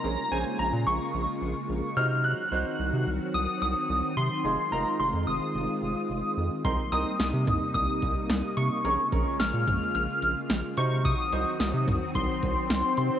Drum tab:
HH |--------|--------|--------|xxxxxxxx|
SD |--------|--------|--------|--o---o-|
T2 |--------|--------|--------|---o----|
BD |--------|--------|--------|o---oo--|

HH |xxxxxxxx|xxxxxxxx|
SD |--o---o-|--o---o-|
T2 |---o----|---o----|
BD |-o------|o---oo--|